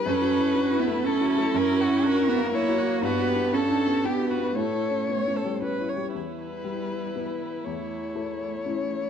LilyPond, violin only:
\new Staff \with { instrumentName = "Violin" } { \time 3/4 \key e \dorian \tempo 4 = 119 b'2 a'8 a'8 | ais'8 fis'8 ais'4 cis''4 | b'4 a'4 g'8 b'8 | cis''2~ cis''8 r8 |
b'2. | cis''2. | }